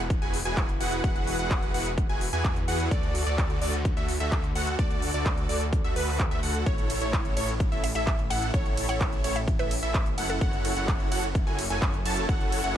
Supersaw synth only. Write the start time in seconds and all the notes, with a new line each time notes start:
0.22 E4 F#4 G#4 B4 G#5
0.45 E4 F#4 G#4 B4 G#5
0.80 E4 F#4 G#4 B4 F#5
1.04 E4 F#4 G#4 B4 F#5
1.39 E4 F#4 G#4 B4 F#5
1.74 E4 F#4 G#4 B4 F#5
2.09 E4 F#4 G#4 B4 G#5
2.33 E4 F#4 G#4 B4 G#5
2.68 E4 F#4 G#4 B4 F#5
2.91 F#4 A4 D5
3.27 F#4 A4 D5
3.62 F#4 A4 D5
3.97 F#4 A4 E5
4.20 F#4 A4 E5
4.55 F#4 A4 F#5
4.79 F#4 D5
5.14 F#4 A4 D5
5.49 F#4 A4 D5
5.84 F#4 A4 E5
5.96 F#4 A4 B4
6.31 F#4 A4 E5
6.43 F#4 A4 F#5
6.66 E4 A4 C#5
7.02 E4 A4 C#5
7.37 E4 A4 C#5
7.72 E4 A4 E5
7.95 E4 A4 E5
8.31 E4 A4 F#5
8.54 E4 A4 C#5
8.89 E4 A4 C#5
9.24 E4 A4 C#5
9.59 E4 A4 E5
9.83 E4 A4 E5
10.18 E4 A4 F#5
10.41 E4 F#4 A4 C#5 F#5
10.77 E4 F#4 A4 C#5 F#5
11.12 E4 F#4 A4 C#5 F#5
11.47 E4 F#4 A4 C#5 G#5
11.70 E4 F#4 A4 C#5 G#5
12.05 E4 F#4 A4 C#5 A5
12.29 E4 F#4 A4 F#5
12.64 E4 F#4 A4 C#5 F#5